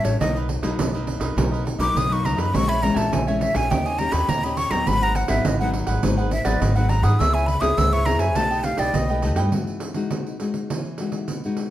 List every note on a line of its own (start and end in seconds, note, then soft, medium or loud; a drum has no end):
0.00 0.17 A1 loud
0.00 0.18 E3 medium
0.00 0.17 G3 medium
0.00 0.17 B3 medium
0.00 0.17 C#4 medium
0.05 0.19 C#5 medium
0.05 pandeiro medium
0.20 0.58 B1 loud
0.20 0.76 B2 medium
0.20 0.60 F#3 medium
0.20 0.60 A#3 medium
0.20 0.34 D#4 soft
0.20 0.60 D#4 medium
0.20 0.34 A#4 medium
0.20 0.35 B4 medium
0.20 0.38 D#5 medium
0.20 0.34 D#5 medium
0.20 pandeiro medium
0.35 0.48 A#4 medium
0.35 0.48 B4 medium
0.35 0.48 D#5 medium
0.35 pandeiro soft
0.48 muted cavaquinho stroke soft
0.48 pandeiro medium
0.62 0.76 B1 medium
0.62 0.88 F#3 medium
0.62 0.89 A#3 medium
0.62 0.89 D#4 medium
0.62 0.92 A#4 soft
0.62 0.92 B4 medium
0.62 0.92 D#5 medium
0.62 pandeiro medium
0.79 1.16 B1 medium
0.79 1.35 F#2 soft
0.79 pandeiro medium
0.93 1.33 F#3 medium
0.93 1.33 A#3 medium
0.93 1.34 D#4 medium
0.93 1.20 A#4 medium
0.93 1.19 B4 medium
0.93 1.19 D#5 medium
0.93 pandeiro soft
1.07 pandeiro medium
1.20 1.34 B1 medium
1.20 1.36 A#4 medium
1.20 1.35 B4 medium
1.20 1.35 D#5 medium
1.20 pandeiro medium
1.36 1.74 B1 medium
1.36 1.93 B2 medium
1.36 1.77 F#3 medium
1.36 1.77 A#3 medium
1.36 1.50 D#4 soft
1.36 1.77 D#4 medium
1.36 1.51 A#4 medium
1.36 1.51 B4 medium
1.36 1.50 D#5 medium
1.36 pandeiro medium
1.51 1.64 A#4 medium
1.51 1.65 B4 medium
1.51 1.65 D#5 medium
1.51 pandeiro soft
1.65 muted cavaquinho stroke soft
1.65 pandeiro medium
1.78 1.92 B1 medium
1.78 2.05 F#3 medium
1.78 2.05 A#3 medium
1.78 2.05 D#4 medium
1.78 2.09 A#4 medium
1.78 2.08 B4 medium
1.78 2.07 D#5 medium
1.78 1.99 D6 medium
1.78 pandeiro medium
1.95 2.38 B1 medium
1.95 2.51 F#2 medium
1.95 2.14 D#6 medium
1.95 pandeiro medium
2.09 2.50 F#3 medium
2.09 2.50 A#3 medium
2.09 2.50 D#4 medium
2.09 2.22 A#4 medium
2.09 2.23 B4 medium
2.09 2.23 D#5 medium
2.09 2.27 C#6 medium
2.09 pandeiro soft
2.23 2.37 D#4 soft
2.23 2.37 A#4 soft
2.23 2.36 B4 soft
2.23 2.35 D#5 medium
2.23 2.41 A#5 medium
2.23 pandeiro medium
2.36 2.51 F#2 medium
2.36 2.51 A#4 medium
2.36 2.52 B4 medium
2.36 2.51 D#5 medium
2.36 2.57 B5 medium
2.36 pandeiro medium
2.52 2.91 A#1 medium
2.52 3.09 A#2 medium
2.52 2.78 E3 medium
2.52 2.79 G#3 medium
2.52 2.79 C#4 medium
2.52 2.67 A#4 soft
2.52 2.67 C#5 soft
2.52 2.67 E5 medium
2.52 2.66 G#5 medium
2.52 2.70 C#6 loud
2.52 pandeiro medium
2.68 2.80 C#5 medium
2.68 2.81 E5 medium
2.68 2.81 G#5 medium
2.68 2.84 B5 loud
2.68 pandeiro soft
2.81 3.22 E3 medium
2.81 3.22 G#3 medium
2.81 3.22 C#4 medium
2.81 2.99 A#5 medium
2.81 muted cavaquinho stroke soft
2.81 pandeiro medium
2.94 3.09 A#1 medium
2.94 3.25 C#5 soft
2.94 3.25 E5 medium
2.94 3.24 G#5 medium
2.94 3.14 A5 medium
2.94 pandeiro medium
3.12 3.50 A#1 medium
3.12 3.68 A#2 soft
3.12 3.30 G#5 medium
3.12 pandeiro medium
3.27 3.52 E3 medium
3.27 3.52 G#3 medium
3.27 3.52 C#4 medium
3.27 3.44 C#5 medium
3.27 3.55 C#5 medium
3.27 3.54 E5 medium
3.27 3.53 G#5 medium
3.27 pandeiro soft
3.41 3.58 E5 medium
3.41 pandeiro medium
3.54 3.73 A#1 medium
3.54 3.94 A#3 medium
3.54 3.95 C#4 medium
3.54 3.95 G4 medium
3.54 3.69 C#5 medium
3.54 3.69 E5 medium
3.54 3.68 G#5 medium
3.54 3.72 G#5 loud
3.54 pandeiro medium
3.70 4.08 D#2 medium
3.70 4.26 D#3 medium
3.70 3.84 D#4 medium
3.70 3.84 G4 medium
3.70 3.84 C#5 medium
3.70 3.84 D#5 medium
3.70 3.88 G5 medium
3.70 pandeiro medium
3.85 3.98 G4 medium
3.85 3.98 C#5 medium
3.85 3.98 D#5 medium
3.85 4.00 G#5 medium
3.85 pandeiro soft
3.98 4.27 A#3 medium
3.98 4.28 C#4 medium
3.98 4.28 G4 medium
3.98 4.14 A#5 medium
3.98 muted cavaquinho stroke soft
3.98 pandeiro medium
4.12 4.26 D#2 medium
4.12 4.42 G4 medium
4.12 4.41 C#5 medium
4.12 4.41 D#5 medium
4.12 4.31 B5 medium
4.12 pandeiro medium
4.28 4.66 D#2 medium
4.28 4.85 A#2 medium
4.28 4.45 A#5 medium
4.28 pandeiro medium
4.44 4.69 A#3 medium
4.44 4.69 C#4 medium
4.44 4.57 G4 medium
4.44 4.69 G4 medium
4.44 4.57 C#5 medium
4.44 4.57 D#5 medium
4.44 4.59 B5 medium
4.44 pandeiro soft
4.57 4.71 D#4 soft
4.57 4.71 G4 soft
4.57 4.71 C#5 soft
4.57 4.70 D#5 medium
4.57 4.72 C#6 loud
4.57 pandeiro medium
4.70 4.84 D#2 medium
4.70 5.11 F#3 medium
4.70 5.11 B3 medium
4.70 5.12 D#4 medium
4.70 4.86 G4 medium
4.70 4.86 C#5 medium
4.70 4.85 D#5 medium
4.70 4.89 A#5 medium
4.70 pandeiro medium
4.87 5.24 G#1 medium
4.87 5.43 G#2 medium
4.87 5.00 D#4 medium
4.87 5.01 G#4 medium
4.87 5.01 B4 medium
4.87 5.01 F#5 medium
4.87 5.04 B5 loud
4.87 pandeiro medium
5.02 5.15 G#4 medium
5.02 5.15 B4 medium
5.02 5.15 F#5 medium
5.02 5.17 A#5 loud
5.02 pandeiro soft
5.15 5.31 F#5 medium
5.15 muted cavaquinho stroke soft
5.15 pandeiro medium
5.28 5.42 G#1 medium
5.28 5.55 F#3 medium
5.28 5.55 B3 medium
5.28 5.55 D#4 medium
5.28 5.59 G#4 soft
5.28 5.58 B4 medium
5.28 5.48 E5 medium
5.28 5.58 F#5 medium
5.28 pandeiro medium
5.45 5.82 G#1 medium
5.45 6.01 D#3 soft
5.45 5.60 D#5 medium
5.45 pandeiro medium
5.59 5.99 F#3 medium
5.59 6.00 B3 medium
5.59 6.00 D#4 medium
5.59 5.88 G#4 medium
5.59 5.87 B4 medium
5.59 5.86 F#5 medium
5.59 5.69 F#5 medium
5.59 pandeiro soft
5.73 pandeiro medium
5.87 6.00 G#1 medium
5.87 6.02 G#4 medium
5.87 6.02 B4 medium
5.87 6.01 F#5 medium
5.87 pandeiro medium
6.03 6.41 G#1 medium
6.03 6.59 G#2 medium
6.03 6.31 F#3 medium
6.03 6.31 B3 medium
6.03 6.17 D#4 soft
6.03 6.31 D#4 medium
6.03 6.17 G#4 medium
6.03 6.18 B4 medium
6.03 6.16 F#5 medium
6.03 pandeiro medium
6.17 6.31 G#4 medium
6.17 6.31 B4 medium
6.17 6.31 F#5 medium
6.17 pandeiro soft
6.31 6.47 E5 medium
6.31 muted cavaquinho stroke soft
6.31 pandeiro medium
6.44 6.58 G#1 medium
6.44 6.71 F#3 medium
6.44 6.71 B3 medium
6.44 6.72 D#4 medium
6.44 6.75 G#4 medium
6.44 6.74 B4 medium
6.44 6.62 D5 medium
6.44 6.74 F#5 medium
6.44 pandeiro medium
6.60 7.04 G#1 loud
6.60 7.17 D#3 medium
6.60 6.77 D#5 medium
6.60 pandeiro medium
6.76 7.15 F#3 medium
6.76 7.16 B3 medium
6.76 7.16 D#4 medium
6.76 6.89 G#4 medium
6.76 6.90 B4 medium
6.76 6.89 F#5 medium
6.76 6.91 F#5 medium
6.76 pandeiro soft
6.89 7.04 D#4 soft
6.89 7.04 G#4 soft
6.89 7.03 B4 soft
6.89 7.02 F#5 medium
6.89 7.05 A#5 medium
6.89 pandeiro medium
7.03 7.16 G#2 loud
7.03 7.19 G#4 soft
7.03 7.18 B4 medium
7.03 7.18 F#5 medium
7.03 7.21 D#6 medium
7.03 pandeiro medium
7.19 7.57 C#2 medium
7.19 7.75 C#3 medium
7.19 7.47 B3 medium
7.19 7.47 E4 medium
7.19 7.33 E4 medium
7.19 7.47 G#4 medium
7.19 7.34 B4 medium
7.19 7.33 C#5 medium
7.19 7.32 E5 medium
7.19 7.35 E6 loud
7.19 pandeiro medium
7.34 7.47 B4 medium
7.34 7.47 C#5 medium
7.34 7.47 E5 medium
7.34 7.48 G#5 medium
7.34 pandeiro soft
7.46 7.62 B5 medium
7.46 muted cavaquinho stroke soft
7.46 pandeiro medium
7.61 7.75 C#2 medium
7.61 8.02 B3 medium
7.61 8.02 E4 medium
7.61 8.02 G#4 medium
7.61 7.91 B4 medium
7.61 7.91 C#5 medium
7.61 7.90 E5 medium
7.61 7.79 D#6 medium
7.61 pandeiro medium
7.78 8.21 C#2 medium
7.78 8.34 G#2 soft
7.78 7.94 E6 loud
7.78 pandeiro medium
7.92 8.20 B4 medium
7.92 8.19 C#5 medium
7.92 8.18 E5 medium
7.92 8.07 C#6 medium
7.92 pandeiro soft
8.06 8.26 B3 medium
8.06 8.26 E4 medium
8.06 8.26 G#4 medium
8.06 8.21 A#5 medium
8.06 pandeiro medium
8.19 8.37 F#2 medium
8.19 8.35 B4 medium
8.19 8.35 C#5 medium
8.19 8.34 E5 medium
8.19 8.37 G#5 medium
8.19 pandeiro medium
8.35 8.74 B1 medium
8.35 8.92 B2 medium
8.35 8.61 A3 medium
8.35 8.61 D#4 medium
8.35 8.61 G4 medium
8.35 8.50 A4 medium
8.35 8.50 B4 medium
8.35 8.50 D#5 medium
8.35 8.49 G5 medium
8.35 8.65 A5 loud
8.35 pandeiro medium
8.51 8.64 B4 medium
8.51 8.64 D#5 medium
8.51 8.64 G5 medium
8.51 pandeiro soft
8.64 8.93 A3 medium
8.64 8.93 D#4 medium
8.64 8.93 G4 medium
8.64 8.80 F5 medium
8.64 muted cavaquinho stroke soft
8.64 pandeiro medium
8.78 8.92 B1 medium
8.78 9.09 B4 medium
8.78 8.97 D5 medium
8.78 9.08 D#5 medium
8.78 9.08 G5 medium
8.78 pandeiro medium
8.94 9.37 B1 medium
8.94 9.51 B2 medium
8.94 9.39 D#5 medium
8.94 pandeiro medium
9.09 9.20 A3 medium
9.09 9.20 D#4 medium
9.09 9.20 G4 medium
9.09 9.23 B4 medium
9.09 9.23 D#5 medium
9.09 9.23 G5 medium
9.09 pandeiro soft
9.22 9.49 A3 medium
9.22 9.49 D#4 medium
9.22 9.49 G4 medium
9.22 9.37 A4 soft
9.22 9.37 B4 soft
9.22 9.37 D#5 medium
9.22 9.35 G5 medium
9.22 pandeiro medium
9.36 9.50 G2 loud
9.36 9.52 B4 medium
9.36 9.52 D#5 medium
9.36 9.51 G5 medium
9.36 pandeiro medium
9.52 10.09 E3 medium
9.52 9.92 G#3 soft
9.52 9.93 D#4 soft
9.52 9.93 F#4 medium
9.52 pandeiro medium
9.67 pandeiro soft
9.80 pandeiro medium
9.94 10.35 G#3 medium
9.94 10.36 D#4 medium
9.94 10.36 F#4 medium
9.94 pandeiro soft
10.11 10.67 B2 soft
10.11 pandeiro medium
10.27 pandeiro soft
10.40 10.79 G#3 soft
10.40 10.79 D#4 soft
10.40 10.79 F#4 medium
10.40 pandeiro medium
10.54 pandeiro soft
10.70 11.26 E3 medium
10.70 pandeiro medium
10.85 pandeiro soft
10.98 11.39 G#3 medium
10.98 11.39 D#4 medium
10.98 11.39 F#4 medium
10.98 pandeiro medium
11.12 pandeiro medium
11.28 11.70 B2 medium
11.28 pandeiro medium
11.44 11.70 G#3 medium
11.44 11.70 D#4 soft
11.44 11.70 F#4 medium
11.44 pandeiro soft
11.57 pandeiro medium